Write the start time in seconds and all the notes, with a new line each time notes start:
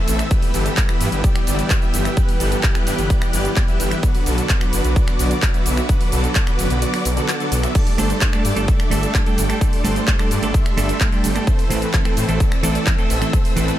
Already playing: E3 A3 C4 A4 E5 A5 E6
0.08 A1, open hi-hat, shaker
0.19 finger snap, closed hi-hat, shaker
0.31 E3 G3 B3 G4 B4 G5, kick, closed hi-hat, shaker
0.42 open hi-hat, shaker
0.54 G1 E3 G3 B3 G4 A4, open hi-hat, shaker
0.66 closed hi-hat, shaker
0.77 kick, clap, closed hi-hat, shaker
0.89 E3 G3 B3 G4 B4, finger snap, closed hi-hat, shaker
1.00 G2, open hi-hat, shaker
1.12 G1, closed hi-hat, shaker
1.24 E3 G3 B3 G4 D5, kick, closed hi-hat, shaker
1.36 finger snap, closed hi-hat, shaker
1.47 G1 E3 G3 B3 G4 D5, open hi-hat, shaker
1.59 closed hi-hat, shaker
1.70 kick, clap, closed hi-hat, shaker
1.82 E3 G3 B3 G4 E5, closed hi-hat, shaker
1.94 G1, open hi-hat, shaker
2.05 finger snap, closed hi-hat, shaker
2.17 E3 G3 B3 G4 B4 F#6, kick, closed hi-hat, shaker
2.29 open hi-hat, shaker
2.40 G1 E3 G3 B3 G4 A4, open hi-hat, shaker
2.52 closed hi-hat, shaker
2.63 kick, clap, closed hi-hat, shaker
2.75 E3 G3 B3 G4 B4, finger snap, closed hi-hat, shaker
2.87 G2, open hi-hat, shaker
2.98 G1, closed hi-hat, shaker
3.10 E3 G3 B3 G4 D5, kick, closed hi-hat, shaker
3.22 finger snap, closed hi-hat, shaker
3.33 G1 E3 G3 B3 G4 D5, open hi-hat, shaker
3.45 closed hi-hat, shaker
3.56 kick, clap, closed hi-hat, shaker
3.68 E3 G3 B3 G4 E5, closed hi-hat, shaker
3.80 G1, open hi-hat, shaker
3.91 finger snap, closed hi-hat, shaker
4.03 D3 F#3 B3 F#4 B4 D5 F#5 D6, kick, closed hi-hat, shaker
4.15 open hi-hat, shaker
4.26 B1 D3 F#3 B3 F#4 A4, open hi-hat, shaker
4.38 closed hi-hat, shaker
4.49 kick, clap, closed hi-hat, shaker
4.61 D3 F#3 B3 F#4 B4, finger snap, closed hi-hat, shaker
4.73 F#1, open hi-hat, shaker
4.84 B1, closed hi-hat, shaker
4.96 D3 F#3 B3 F#4 D5, kick, closed hi-hat, shaker
5.08 finger snap, closed hi-hat, shaker
5.19 B1 D3 F#3 B3 F#4 D5, open hi-hat, shaker
5.31 closed hi-hat, shaker
5.42 kick, clap, closed hi-hat, shaker
5.54 D3 F#3 B3 F#4 E5, closed hi-hat, shaker
5.66 B1, open hi-hat, shaker
5.77 finger snap, closed hi-hat, shaker
5.89 D3 F#3 B3 F#4 B4, kick, closed hi-hat, shaker
6.01 open hi-hat, shaker
6.12 B1 D3 F#3 B3 F#4 A4, open hi-hat, shaker
6.24 closed hi-hat, shaker
6.35 kick, clap, closed hi-hat, shaker
6.47 D3 F#3 B3 F#4 B4, finger snap, closed hi-hat, shaker
6.59 F#1, open hi-hat, shaker
6.70 B1, closed hi-hat, shaker
6.82 D3 F#3 B3 F#4 D5, closed hi-hat, shaker
6.94 finger snap, open hi-hat, shaker
7.05 B1, open hi-hat, shaker
7.17 D3 F#3 B3 F#4 A4, closed hi-hat, shaker
7.28 clap, closed hi-hat, shaker
7.40 D3 F#3 B3 F#4 A4, closed hi-hat, shaker
7.52 B1, open hi-hat, shaker
7.63 D3 F#3 B3 F#4 E5, finger snap, closed hi-hat, shaker
7.75 G3 A3 D4 A4 D5 G5, kick, closed hi-hat, crash, shaker
7.87 open hi-hat, shaker
7.98 G1 G3 A3 D4 A4 C5, open hi-hat, shaker
8.10 closed hi-hat, shaker
8.21 kick, clap, closed hi-hat, shaker
8.33 G3 A3 D4 A4 D5, finger snap, closed hi-hat, shaker
8.45 G2, open hi-hat, shaker
8.56 G1 G3 A3 D4 A4, closed hi-hat, shaker
8.68 G3 A3 D4 A4 E5, kick, closed hi-hat, shaker
8.80 finger snap, closed hi-hat, shaker
8.91 G1 G3 A3 D4 A4 E5, open hi-hat, shaker
9.03 closed hi-hat, shaker
9.15 kick, clap, closed hi-hat, shaker
9.26 G3 A3 D4 A4 G5, closed hi-hat, shaker
9.38 G1, open hi-hat, shaker
9.49 G3 A3 D4 A4, finger snap, closed hi-hat, shaker
9.61 G3 A3 D4 A4 D5 C6, kick, closed hi-hat, shaker
9.73 open hi-hat, shaker
9.84 G1 G3 A3 D4 A4 C5, open hi-hat, shaker
9.96 closed hi-hat, shaker
10.08 kick, clap, closed hi-hat, shaker
10.19 G3 A3 D4 A4 D5, finger snap, closed hi-hat, shaker
10.31 G2, open hi-hat, shaker
10.42 G1 G3 A3 D4 A4, closed hi-hat, shaker
10.54 G3 A3 D4 A4 E5, kick, closed hi-hat, shaker
10.66 finger snap, closed hi-hat, shaker
10.77 G1 G3 A3 D4 A4 E5, open hi-hat, shaker
10.89 closed hi-hat, shaker
11.01 kick, clap, closed hi-hat, shaker
11.12 G3 A3 D4 A4 G5, closed hi-hat, shaker
11.24 G1, open hi-hat, shaker
11.35 G3 A3 D4 A4, finger snap, closed hi-hat, shaker
11.47 E3 A3 C4 A4 C5 E5 A5 E6, kick, closed hi-hat, shaker
11.59 open hi-hat, shaker
11.70 A1 E3 A3 C4 A4 B4, open hi-hat, shaker
11.82 closed hi-hat, shaker
11.94 kick, clap, closed hi-hat, shaker
12.05 E3 A3 C4 A4 C5, finger snap, closed hi-hat, shaker
12.17 A2, open hi-hat, shaker
12.28 A1 E3 A3 C4 A4, closed hi-hat, shaker
12.40 E3 A3 C4 A4 D5, kick, closed hi-hat, shaker
12.52 finger snap, closed hi-hat, shaker
12.63 A1 E3 A3 C4 A4 D5, open hi-hat, shaker
12.75 closed hi-hat, shaker
12.87 kick, clap, closed hi-hat, shaker
12.98 E3 A3 C4 A4 E5, closed hi-hat, shaker
13.10 A1, open hi-hat, shaker
13.21 E3 A3 C4 A4, finger snap, closed hi-hat, shaker
13.33 E3 A3 C4 A4 C5, kick, closed hi-hat, shaker
13.45 open hi-hat, shaker
13.56 A1 E3 A3 C4 A4 B4, open hi-hat, shaker
13.68 closed hi-hat, shaker